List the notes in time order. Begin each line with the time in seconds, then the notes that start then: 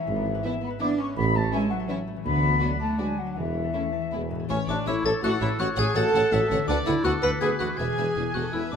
Already playing: E3 G#3 E4 G#4 E5 G#5
0.07 G#1 G#2
0.16 B3
0.25 E4
0.35 B4
0.44 E3 B3 E4 E5
0.53 E5
0.61 B3 B5
0.70 B4
0.79 E3 B3 D4 E4 E5 D6
0.88 B3
0.98 G#3 C#4 C#6
1.06 B3
1.16 A1 A2 B3 B5
1.25 A3
1.34 A3 E4 A5
1.43 C#5
1.51 E3 G#3 C#4 E4 A4 E5 G#5
1.61 E5
1.70 F#3 F#5 C#6
1.80 A4
1.88 E3 C#4 E4 C#5 E5
1.98 E4
2.07 A3
2.16 E3
2.25 D2 D3 B3 B5
2.35 F#3
2.44 F#4
2.53 D5
2.61 F#3 D4 F#4 B4
2.71 F#5
2.79 A3 A5 D6
2.88 F#4
2.98 F#3 G#3 D4 F#4 B4 D5 G#5
3.07 F#4
3.17 F#3 F#5
3.27 D4
3.31 F#5
3.36 E1 E2 E3 E5
3.45 E4
3.54 C#5
3.64 A4
3.73 A3 C#4 E4 A4 E5
3.83 C#6
3.92 A5
4.02 E5
4.12 E1 E2 E3 G#3 B3 E4 G#4
4.21 E4
4.30 A2 B4
4.35 A3
4.39 E4 G#4
4.44 A4
4.49 A1 A2 C#4 C#5 E5 C#6
4.68 A1 A2 D4 C#5 D5 E5 D6
4.86 A1 A2 A3 E4 C#5 E5 E6
5.04 A1 A2 A4 C#5 E5 A5 A6
5.22 A1 A2 A3 E4 F#4 A4 C#5 E5 F#5 F#6
5.40 A1 A2 E4 C#5 E5 E6
5.45 A3
5.50 F#4
5.55 A4
5.59 A1 A2 F#4 C#5 F#5 F#6
5.76 A1 A2 G#4 C#5 F#5 G#5 G#6
5.95 A1 A2 A3 F#4 A4 C#5 F#5 A5 A6
6.14 A1 A2 C#5 F#5
6.31 A1 A2 A3 F#4 C#5 E5 F#5
6.50 A1 A2 D3 C#5 F#5
6.55 B3
6.59 F#4
6.64 A4
6.68 D2 D4 B4 D5 F#5 D6
6.86 D2 E4 B4 E5 F#5 E6
7.04 D2 B3 F#4 A4 B4 F#5 F#6
7.22 D2 D3 B4 F#5 B5 B6
7.27 B3
7.31 F#4
7.36 B4
7.41 D2 B3 F#4 G#4 B4 F#5 G#5 G#6
7.59 D2 E3 F#4 B4 F#5 F#6
7.64 B3
7.69 E4
7.74 B4 G#6
7.78 E1 E2 G#4 B4 E5 G#5
7.97 E1 E2 B4 E5
8.15 E1 E2 B3 E4 G#4
8.34 E1 E2 F#4 A4 F#5 F#6
8.53 E1 E2 B3 E4 B4 E5 E6
8.72 E1 E2 D4 D5 E5 D6